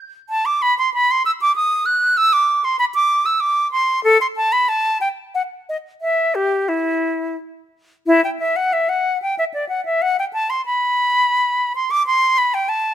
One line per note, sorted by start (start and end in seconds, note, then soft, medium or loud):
0.30 0.47 A5 loud
0.46 0.64 D6 loud
0.62 0.77 B5 loud
0.79 0.93 C6 medium
0.94 1.13 B5 loud
1.11 1.25 C6 loud
1.26 1.32 E6 loud
1.41 1.55 D6 loud
1.56 1.87 D#6 loud
1.86 2.19 F#6 loud
2.17 2.34 E6 loud
2.33 2.66 D6 loud
2.64 2.79 C6 loud
2.79 2.85 B5 loud
2.95 3.27 D6 loud
3.26 3.42 E6 medium
3.40 3.71 D6 loud
3.72 4.03 C6 loud
4.04 4.20 A4 loud
4.21 4.27 C6 medium
4.37 4.54 A5 loud
4.52 4.70 B5 loud
4.69 5.00 A5 loud
5.01 5.08 G5 medium
5.35 5.42 F#5 medium
5.69 5.77 D#5 medium
6.01 6.36 E5 medium
6.35 6.70 G4 medium
6.69 7.36 E4 medium
8.07 8.23 E4 loud
8.24 8.30 G5 medium
8.39 8.58 E5 medium
8.56 8.74 F#5 medium
8.73 8.91 E5 medium
8.89 9.21 F#5 medium
9.22 9.37 G5 medium
9.38 9.45 E5 medium
9.54 9.68 D5 medium
9.69 9.84 F#5 medium
9.85 10.03 E5 medium
10.02 10.17 F#5 loud
10.19 10.25 G5 medium
10.33 10.51 A5 loud
10.50 10.65 C6 medium
10.66 11.73 B5 loud
11.75 11.92 C6 medium
11.91 12.06 D6 loud
12.07 12.40 C6 medium
12.38 12.56 B5 medium
12.54 12.70 G5 loud
12.69 12.94 A5 medium